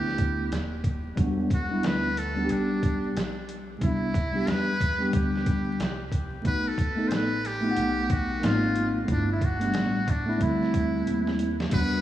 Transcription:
0.00 0.53 D2 medium
0.00 0.50 A3 medium
0.00 0.50 B3 medium
0.00 0.51 D4 medium
0.00 0.52 E4 medium
0.00 0.52 G4 medium
0.07 snare soft
0.18 kick medium
0.18 closed hi-hat medium
0.52 1.14 D#1 medium
0.52 snare medium
0.52 closed hi-hat medium
0.84 kick medium
0.84 closed hi-hat medium
1.16 1.80 E1 medium
1.16 1.48 G3 medium
1.16 1.48 B3 medium
1.16 1.49 D4 medium
1.16 kick medium
1.16 closed hi-hat medium
1.20 1.50 F#4 medium
1.50 1.88 F#4 medium
1.50 kick medium
1.50 closed hi-hat medium
1.69 2.09 G3 medium
1.69 2.09 B3 medium
1.69 2.10 D4 medium
1.73 2.11 E4 medium
1.83 2.46 D2 medium
1.83 2.20 B4 medium
1.83 snare loud
1.83 closed hi-hat medium
2.17 2.53 A4 medium
2.17 closed hi-hat medium
2.34 3.14 G3 medium
2.34 3.14 B3 medium
2.34 3.15 D4 medium
2.38 2.42 F#4 medium
2.45 3.19 G4 medium
2.49 3.12 B1 medium
2.49 3.16 D4 medium
2.49 closed hi-hat medium
2.83 kick medium
2.83 closed hi-hat medium
3.15 3.78 B1 medium
3.15 snare medium
3.15 closed hi-hat medium
3.49 closed hi-hat medium
3.79 4.44 C2 medium
3.79 4.11 G3 medium
3.79 4.12 B3 medium
3.79 4.12 D4 medium
3.79 4.49 E4 medium
3.79 kick medium
3.79 closed hi-hat medium
3.83 4.13 E4 medium
4.14 kick medium
4.14 closed hi-hat medium
4.32 4.72 G3 medium
4.32 4.73 B3 medium
4.32 4.73 D4 medium
4.36 4.74 G4 medium
4.47 5.10 E2 medium
4.47 5.13 B4 loud
4.47 snare loud
4.47 closed hi-hat medium
4.81 kick medium
4.81 closed hi-hat medium
4.98 5.77 G3 medium
4.98 5.78 B3 medium
4.98 5.79 D4 medium
4.98 5.79 G4 medium
5.13 5.76 D2 medium
5.13 6.09 G4 medium
5.13 kick medium
5.13 closed hi-hat medium
5.36 snare soft
5.46 kick medium
5.46 closed hi-hat medium
5.79 6.41 C2 medium
5.79 snare medium
5.79 closed hi-hat medium
6.12 kick medium
6.12 closed hi-hat medium
6.42 7.11 B1 medium
6.42 6.75 A3 medium
6.42 6.75 B3 medium
6.42 6.76 D#4 medium
6.42 kick loud
6.42 closed hi-hat medium
6.46 6.77 F#4 medium
6.46 6.69 B4 loud
6.68 7.09 A4 medium
6.78 kick medium
6.78 closed hi-hat medium
6.95 7.36 A3 medium
6.95 7.36 B3 medium
6.95 7.37 D#4 medium
6.95 7.38 A4 medium
7.08 7.73 A1 medium
7.08 7.15 C5 medium
7.08 snare loud
7.08 closed hi-hat medium
7.14 7.48 B4 loud
7.45 8.14 G4 medium
7.45 closed hi-hat medium
7.61 8.40 A3 medium
7.61 8.40 B3 medium
7.61 8.41 D#4 medium
7.61 7.69 F4 medium
7.71 8.46 F#5 medium
7.77 8.39 B1 medium
7.77 closed hi-hat medium
8.10 8.47 F#4 medium
8.10 kick medium
8.10 closed hi-hat medium
8.40 9.05 G#1 loud
8.40 8.97 A#3 medium
8.40 8.50 B3 medium
8.40 8.98 D#4 medium
8.40 8.99 F4 medium
8.40 closed hi-hat medium
8.44 9.01 C4 medium
8.44 8.97 F4 medium
8.44 snare loud
8.75 closed hi-hat medium
9.05 9.71 G1 loud
9.05 9.38 A3 medium
9.05 9.39 B3 medium
9.05 9.39 D4 medium
9.05 9.40 E4 medium
9.05 kick loud
9.05 closed hi-hat medium
9.11 9.29 D4 medium
9.32 9.46 E4 medium
9.41 10.12 F#4 loud
9.41 kick medium
9.41 closed hi-hat medium
9.59 10.00 A3 medium
9.59 10.00 B3 medium
9.59 10.01 D4 medium
9.59 closed hi-hat soft
9.63 10.02 G3 medium
9.74 10.37 A1 medium
9.74 snare loud
9.74 closed hi-hat medium
10.08 10.44 D4 medium
10.08 kick medium
10.08 closed hi-hat medium
10.26 10.38 A3 medium
10.26 10.40 B3 medium
10.26 10.41 D4 medium
10.26 10.41 E4 medium
10.38 11.03 D2 medium
10.38 11.46 G3 medium
10.38 11.47 A3 medium
10.38 11.48 C4 medium
10.38 11.48 E4 medium
10.38 kick medium
10.38 closed hi-hat medium
10.43 11.40 E4 medium
10.63 snare soft
10.74 kick medium
10.74 closed hi-hat medium
11.07 11.69 D#2 medium
11.07 closed hi-hat medium
11.27 snare soft
11.39 closed hi-hat medium
11.60 snare medium
11.70 12.01 E2 medium
11.70 12.01 G3 medium
11.70 12.01 B3 medium
11.70 12.01 D4 medium
11.70 12.01 B4 loud
11.70 kick loud
11.70 closed hi-hat medium
11.70 crash loud
11.74 12.01 F#4 medium

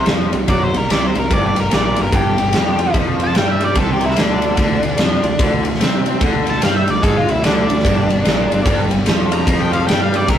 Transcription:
0.06 0.31 F2 medium
0.06 0.32 F3 medium
0.06 snare loud
0.06 ride medium
0.33 0.48 C2 medium
0.33 0.46 C3 medium
0.33 ride medium
0.48 0.72 F#2 loud
0.48 0.73 F#3 loud
0.48 0.64 D5 loud
0.48 kick loud
0.48 ride loud
0.64 0.77 C5 medium
0.74 0.89 C2 medium
0.74 0.87 C3 medium
0.74 0.90 A#4 medium
0.74 ride medium
0.90 1.14 C2 medium
0.90 1.15 C3 medium
0.90 1.04 D5 medium
0.90 snare loud
0.90 ride loud
1.07 1.18 C5 medium
1.15 1.30 C2 medium
1.15 1.28 C3 medium
1.15 1.31 A#4 medium
1.15 ride medium
1.31 1.55 G1 medium
1.31 1.56 G2 loud
1.31 1.46 D5 loud
1.31 kick loud
1.31 ride medium
1.47 1.59 D5 medium
1.56 1.72 G1 medium
1.56 1.69 G2 medium
1.56 ride medium
1.60 1.73 A#4 medium
1.71 1.96 A#1 medium
1.71 1.97 A#2 loud
1.71 1.85 D5 medium
1.71 snare loud
1.71 ride medium
1.86 1.99 D5 medium
1.96 2.12 G1 medium
1.96 2.10 G2 medium
1.96 ride medium
2.02 2.14 A#4 loud
2.12 2.36 G1 loud
2.12 2.38 G2 loud
2.12 2.93 G4 loud
2.12 kick loud
2.12 ride loud
2.38 2.53 G1 medium
2.38 2.51 G2 medium
2.38 ride medium
2.53 2.92 F2 medium
2.53 2.94 F3 loud
2.53 snare loud
2.53 ride medium
2.79 ride medium
2.94 3.32 F2 medium
2.94 3.35 F3 loud
2.94 kick loud
2.94 ride medium
3.20 ride medium
3.24 3.36 A5 loud
3.35 3.74 G2 medium
3.35 3.76 G3 medium
3.35 3.52 G5 medium
3.35 snare loud
3.35 ride medium
3.52 3.64 E5 medium
3.61 ride medium
3.65 3.77 D5 medium
3.75 4.14 C2 medium
3.75 4.16 C3 medium
3.75 3.91 A4 loud
3.75 kick loud
3.75 ride loud
3.92 4.05 G4 medium
4.01 ride medium
4.05 4.18 E4 medium
4.11 snare soft
4.16 4.56 D2 medium
4.16 4.57 D3 medium
4.16 snare loud
4.16 ride loud
4.20 4.32 D4 medium
4.33 5.51 D4 medium
4.42 ride medium
4.57 4.82 D2 medium
4.57 4.82 D3 loud
4.57 kick loud
4.57 ride loud
4.83 4.98 D2 medium
4.83 4.96 D3 medium
4.83 ride medium
4.98 5.23 F2 loud
4.98 5.23 F3 medium
4.98 snare loud
4.98 ride loud
5.24 5.39 D2 medium
5.24 5.37 D3 medium
5.24 ride medium
5.39 5.63 D2 medium
5.39 5.64 D3 loud
5.39 kick loud
5.39 ride loud
5.65 5.80 D2 medium
5.65 5.78 D3 medium
5.65 ride medium
5.74 snare soft
5.80 6.19 C3 medium
5.80 6.21 C4 loud
5.80 snare loud
5.80 ride loud
6.06 ride medium
6.21 6.59 D2 medium
6.21 6.62 D3 loud
6.21 kick loud
6.21 ride loud
6.47 6.63 A5 loud
6.47 ride medium
6.62 6.86 G2 medium
6.62 6.87 G3 medium
6.62 6.76 F5 medium
6.62 snare loud
6.62 ride loud
6.76 6.90 E5 medium
6.87 7.03 D2 medium
6.87 7.00 D3 medium
6.87 7.03 D5 loud
6.87 ride medium
7.02 7.27 G#2 medium
7.02 7.27 G#3 loud
7.02 7.16 A4 loud
7.02 kick loud
7.02 ride loud
7.17 7.30 F4 medium
7.29 7.43 D2 medium
7.29 7.41 D3 medium
7.29 7.44 E4 medium
7.29 ride medium
7.43 7.68 D2 medium
7.43 7.68 D3 loud
7.43 7.56 D4 medium
7.43 snare loud
7.43 ride medium
7.57 8.76 D4 medium
7.69 7.84 D2 medium
7.69 7.81 D3 medium
7.69 ride medium
7.79 snare soft
7.85 8.08 G1 medium
7.85 8.08 G2 loud
7.85 kick loud
7.85 ride loud
8.10 8.25 G1 medium
8.10 8.22 G2 medium
8.10 ride medium
8.25 8.50 A#1 loud
8.25 8.50 A#2 loud
8.25 snare loud
8.25 ride medium
8.51 8.65 G1 medium
8.51 8.63 G2 medium
8.51 ride medium
8.65 8.90 G1 medium
8.65 8.90 G2 loud
8.65 kick loud
8.65 ride loud
8.91 9.06 G1 medium
8.91 9.04 G2 medium
8.91 ride medium
9.06 9.45 F2 medium
9.06 9.45 F3 loud
9.06 snare loud
9.06 ride loud
9.32 9.60 A#5 medium
9.32 ride medium
9.46 9.86 F2 medium
9.46 9.88 F3 loud
9.46 kick loud
9.46 ride loud
9.60 9.73 G5 loud
9.73 9.87 F5 medium
9.73 ride medium
9.87 10.27 G2 medium
9.87 10.29 G3 loud
9.87 10.01 G5 loud
9.87 snare loud
9.87 ride loud
10.02 10.16 F5 medium
10.14 10.29 D5 medium
10.14 ride medium
10.27 10.38 C2 medium
10.27 10.38 C3 loud
10.27 10.38 A#4 loud
10.27 kick loud
10.27 ride medium

